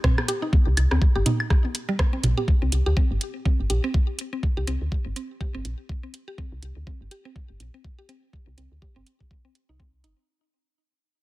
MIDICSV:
0, 0, Header, 1, 4, 480
1, 0, Start_track
1, 0, Key_signature, -3, "minor"
1, 0, Tempo, 487805
1, 520, Time_signature, 4, 2, 24, 8
1, 11047, End_track
2, 0, Start_track
2, 0, Title_t, "Synth arpeggio sound"
2, 0, Program_c, 0, 84
2, 39, Note_on_c, 0, 60, 83
2, 92, Note_off_c, 0, 60, 0
2, 279, Note_on_c, 0, 67, 99
2, 314, Note_off_c, 0, 67, 0
2, 417, Note_on_c, 0, 63, 73
2, 456, Note_off_c, 0, 63, 0
2, 897, Note_on_c, 0, 60, 76
2, 936, Note_off_c, 0, 60, 0
2, 1137, Note_on_c, 0, 67, 97
2, 1163, Note_off_c, 0, 67, 0
2, 1238, Note_on_c, 0, 63, 76
2, 1291, Note_off_c, 0, 63, 0
2, 1857, Note_on_c, 0, 55, 100
2, 1896, Note_off_c, 0, 55, 0
2, 2097, Note_on_c, 0, 60, 74
2, 2123, Note_off_c, 0, 60, 0
2, 2337, Note_on_c, 0, 67, 97
2, 2363, Note_off_c, 0, 67, 0
2, 2577, Note_on_c, 0, 60, 71
2, 2616, Note_off_c, 0, 60, 0
2, 2817, Note_on_c, 0, 67, 101
2, 2843, Note_off_c, 0, 67, 0
2, 2919, Note_on_c, 0, 60, 98
2, 2972, Note_off_c, 0, 60, 0
2, 3399, Note_on_c, 0, 60, 78
2, 3452, Note_off_c, 0, 60, 0
2, 3639, Note_on_c, 0, 67, 100
2, 3674, Note_off_c, 0, 67, 0
2, 3778, Note_on_c, 0, 60, 96
2, 3817, Note_off_c, 0, 60, 0
2, 4259, Note_on_c, 0, 60, 74
2, 4297, Note_off_c, 0, 60, 0
2, 4498, Note_on_c, 0, 67, 93
2, 4524, Note_off_c, 0, 67, 0
2, 4600, Note_on_c, 0, 60, 98
2, 4652, Note_off_c, 0, 60, 0
2, 5080, Note_on_c, 0, 60, 76
2, 5132, Note_off_c, 0, 60, 0
2, 5320, Note_on_c, 0, 67, 98
2, 5354, Note_off_c, 0, 67, 0
2, 5457, Note_on_c, 0, 60, 99
2, 5496, Note_off_c, 0, 60, 0
2, 5937, Note_on_c, 0, 60, 75
2, 5976, Note_off_c, 0, 60, 0
2, 6177, Note_on_c, 0, 67, 99
2, 6203, Note_off_c, 0, 67, 0
2, 6279, Note_on_c, 0, 60, 94
2, 6332, Note_off_c, 0, 60, 0
2, 6759, Note_on_c, 0, 60, 78
2, 6812, Note_off_c, 0, 60, 0
2, 6999, Note_on_c, 0, 67, 98
2, 7034, Note_off_c, 0, 67, 0
2, 7137, Note_on_c, 0, 60, 95
2, 7176, Note_off_c, 0, 60, 0
2, 7618, Note_on_c, 0, 60, 74
2, 7656, Note_off_c, 0, 60, 0
2, 7858, Note_on_c, 0, 67, 99
2, 7884, Note_off_c, 0, 67, 0
2, 7959, Note_on_c, 0, 60, 99
2, 8012, Note_off_c, 0, 60, 0
2, 8439, Note_on_c, 0, 60, 73
2, 8492, Note_off_c, 0, 60, 0
2, 8678, Note_on_c, 0, 67, 95
2, 8714, Note_off_c, 0, 67, 0
2, 8817, Note_on_c, 0, 60, 98
2, 8856, Note_off_c, 0, 60, 0
2, 9297, Note_on_c, 0, 60, 73
2, 9336, Note_off_c, 0, 60, 0
2, 9537, Note_on_c, 0, 63, 75
2, 9563, Note_off_c, 0, 63, 0
2, 9639, Note_on_c, 0, 60, 77
2, 9674, Note_off_c, 0, 60, 0
2, 9878, Note_on_c, 0, 63, 74
2, 9914, Note_off_c, 0, 63, 0
2, 11047, End_track
3, 0, Start_track
3, 0, Title_t, "FM bass"
3, 0, Program_c, 1, 39
3, 657, Note_on_c, 1, 36, 97
3, 728, Note_off_c, 1, 36, 0
3, 759, Note_on_c, 1, 36, 80
3, 855, Note_off_c, 1, 36, 0
3, 898, Note_on_c, 1, 38, 77
3, 968, Note_off_c, 1, 38, 0
3, 1137, Note_on_c, 1, 31, 92
3, 1208, Note_off_c, 1, 31, 0
3, 2199, Note_on_c, 1, 34, 89
3, 2295, Note_off_c, 1, 34, 0
3, 2577, Note_on_c, 1, 36, 95
3, 2648, Note_off_c, 1, 36, 0
3, 2680, Note_on_c, 1, 36, 77
3, 2775, Note_off_c, 1, 36, 0
3, 2818, Note_on_c, 1, 38, 76
3, 2888, Note_off_c, 1, 38, 0
3, 3058, Note_on_c, 1, 31, 93
3, 3128, Note_off_c, 1, 31, 0
3, 3538, Note_on_c, 1, 31, 76
3, 3608, Note_off_c, 1, 31, 0
3, 3640, Note_on_c, 1, 34, 86
3, 3735, Note_off_c, 1, 34, 0
3, 4498, Note_on_c, 1, 36, 96
3, 4568, Note_off_c, 1, 36, 0
3, 4600, Note_on_c, 1, 36, 76
3, 4695, Note_off_c, 1, 36, 0
3, 4738, Note_on_c, 1, 38, 76
3, 4808, Note_off_c, 1, 38, 0
3, 4978, Note_on_c, 1, 31, 90
3, 5048, Note_off_c, 1, 31, 0
3, 5457, Note_on_c, 1, 31, 77
3, 5528, Note_off_c, 1, 31, 0
3, 5559, Note_on_c, 1, 34, 86
3, 5655, Note_off_c, 1, 34, 0
3, 6418, Note_on_c, 1, 36, 94
3, 6488, Note_off_c, 1, 36, 0
3, 6519, Note_on_c, 1, 36, 78
3, 6615, Note_off_c, 1, 36, 0
3, 6657, Note_on_c, 1, 38, 78
3, 6727, Note_off_c, 1, 38, 0
3, 6897, Note_on_c, 1, 31, 90
3, 6967, Note_off_c, 1, 31, 0
3, 7377, Note_on_c, 1, 31, 75
3, 7448, Note_off_c, 1, 31, 0
3, 7479, Note_on_c, 1, 34, 85
3, 7574, Note_off_c, 1, 34, 0
3, 8337, Note_on_c, 1, 36, 96
3, 8408, Note_off_c, 1, 36, 0
3, 8439, Note_on_c, 1, 36, 77
3, 8534, Note_off_c, 1, 36, 0
3, 8577, Note_on_c, 1, 38, 74
3, 8647, Note_off_c, 1, 38, 0
3, 8817, Note_on_c, 1, 31, 89
3, 8887, Note_off_c, 1, 31, 0
3, 9537, Note_on_c, 1, 36, 82
3, 9880, Note_on_c, 1, 31, 76
3, 9895, Note_off_c, 1, 36, 0
3, 9975, Note_off_c, 1, 31, 0
3, 11047, End_track
4, 0, Start_track
4, 0, Title_t, "Drums"
4, 39, Note_on_c, 9, 36, 117
4, 39, Note_on_c, 9, 37, 104
4, 40, Note_on_c, 9, 45, 91
4, 137, Note_off_c, 9, 37, 0
4, 138, Note_off_c, 9, 36, 0
4, 138, Note_off_c, 9, 45, 0
4, 178, Note_on_c, 9, 37, 57
4, 178, Note_on_c, 9, 48, 45
4, 178, Note_on_c, 9, 76, 58
4, 277, Note_off_c, 9, 37, 0
4, 277, Note_off_c, 9, 48, 0
4, 277, Note_off_c, 9, 76, 0
4, 279, Note_on_c, 9, 42, 93
4, 378, Note_off_c, 9, 42, 0
4, 519, Note_on_c, 9, 36, 115
4, 520, Note_on_c, 9, 48, 46
4, 618, Note_off_c, 9, 36, 0
4, 619, Note_off_c, 9, 48, 0
4, 759, Note_on_c, 9, 42, 90
4, 761, Note_on_c, 9, 76, 61
4, 858, Note_off_c, 9, 42, 0
4, 859, Note_off_c, 9, 76, 0
4, 899, Note_on_c, 9, 37, 60
4, 899, Note_on_c, 9, 48, 44
4, 997, Note_off_c, 9, 37, 0
4, 997, Note_off_c, 9, 48, 0
4, 999, Note_on_c, 9, 36, 111
4, 1098, Note_off_c, 9, 36, 0
4, 1239, Note_on_c, 9, 42, 91
4, 1240, Note_on_c, 9, 45, 76
4, 1240, Note_on_c, 9, 48, 43
4, 1338, Note_off_c, 9, 42, 0
4, 1339, Note_off_c, 9, 45, 0
4, 1339, Note_off_c, 9, 48, 0
4, 1378, Note_on_c, 9, 76, 60
4, 1477, Note_off_c, 9, 76, 0
4, 1480, Note_on_c, 9, 36, 112
4, 1480, Note_on_c, 9, 37, 57
4, 1578, Note_off_c, 9, 36, 0
4, 1578, Note_off_c, 9, 37, 0
4, 1619, Note_on_c, 9, 48, 45
4, 1718, Note_off_c, 9, 48, 0
4, 1719, Note_on_c, 9, 42, 90
4, 1818, Note_off_c, 9, 42, 0
4, 1959, Note_on_c, 9, 37, 97
4, 1960, Note_off_c, 9, 37, 0
4, 1960, Note_on_c, 9, 36, 116
4, 1960, Note_on_c, 9, 37, 58
4, 1960, Note_on_c, 9, 48, 44
4, 1960, Note_on_c, 9, 76, 62
4, 2058, Note_off_c, 9, 36, 0
4, 2059, Note_off_c, 9, 37, 0
4, 2059, Note_off_c, 9, 48, 0
4, 2059, Note_off_c, 9, 76, 0
4, 2199, Note_on_c, 9, 42, 88
4, 2201, Note_on_c, 9, 45, 85
4, 2297, Note_off_c, 9, 42, 0
4, 2299, Note_off_c, 9, 45, 0
4, 2339, Note_on_c, 9, 48, 43
4, 2438, Note_off_c, 9, 48, 0
4, 2440, Note_on_c, 9, 36, 109
4, 2538, Note_off_c, 9, 36, 0
4, 2679, Note_on_c, 9, 42, 88
4, 2777, Note_off_c, 9, 42, 0
4, 2920, Note_on_c, 9, 36, 111
4, 3018, Note_off_c, 9, 36, 0
4, 3159, Note_on_c, 9, 42, 87
4, 3257, Note_off_c, 9, 42, 0
4, 3400, Note_on_c, 9, 36, 110
4, 3498, Note_off_c, 9, 36, 0
4, 3639, Note_on_c, 9, 42, 86
4, 3738, Note_off_c, 9, 42, 0
4, 3880, Note_on_c, 9, 36, 107
4, 3978, Note_off_c, 9, 36, 0
4, 4119, Note_on_c, 9, 42, 90
4, 4218, Note_off_c, 9, 42, 0
4, 4360, Note_on_c, 9, 36, 107
4, 4458, Note_off_c, 9, 36, 0
4, 4599, Note_on_c, 9, 42, 86
4, 4698, Note_off_c, 9, 42, 0
4, 4840, Note_on_c, 9, 36, 103
4, 4938, Note_off_c, 9, 36, 0
4, 5079, Note_on_c, 9, 42, 81
4, 5178, Note_off_c, 9, 42, 0
4, 5319, Note_on_c, 9, 36, 103
4, 5418, Note_off_c, 9, 36, 0
4, 5559, Note_on_c, 9, 42, 80
4, 5657, Note_off_c, 9, 42, 0
4, 5799, Note_on_c, 9, 36, 106
4, 5898, Note_off_c, 9, 36, 0
4, 6039, Note_on_c, 9, 42, 85
4, 6138, Note_off_c, 9, 42, 0
4, 6279, Note_on_c, 9, 36, 106
4, 6378, Note_off_c, 9, 36, 0
4, 6519, Note_on_c, 9, 42, 80
4, 6617, Note_off_c, 9, 42, 0
4, 6759, Note_on_c, 9, 36, 101
4, 6858, Note_off_c, 9, 36, 0
4, 6999, Note_on_c, 9, 42, 82
4, 7097, Note_off_c, 9, 42, 0
4, 7239, Note_on_c, 9, 36, 102
4, 7337, Note_off_c, 9, 36, 0
4, 7479, Note_on_c, 9, 42, 79
4, 7578, Note_off_c, 9, 42, 0
4, 7719, Note_on_c, 9, 36, 104
4, 7818, Note_off_c, 9, 36, 0
4, 7960, Note_on_c, 9, 42, 79
4, 8058, Note_off_c, 9, 42, 0
4, 8199, Note_on_c, 9, 36, 105
4, 8298, Note_off_c, 9, 36, 0
4, 8440, Note_on_c, 9, 42, 83
4, 8538, Note_off_c, 9, 42, 0
4, 8679, Note_on_c, 9, 36, 102
4, 8778, Note_off_c, 9, 36, 0
4, 8920, Note_on_c, 9, 42, 81
4, 9018, Note_off_c, 9, 42, 0
4, 9058, Note_on_c, 9, 36, 51
4, 9156, Note_off_c, 9, 36, 0
4, 9159, Note_on_c, 9, 36, 101
4, 9258, Note_off_c, 9, 36, 0
4, 9399, Note_on_c, 9, 42, 79
4, 9498, Note_off_c, 9, 42, 0
4, 9639, Note_on_c, 9, 36, 105
4, 9738, Note_off_c, 9, 36, 0
4, 9879, Note_on_c, 9, 42, 83
4, 9978, Note_off_c, 9, 42, 0
4, 11047, End_track
0, 0, End_of_file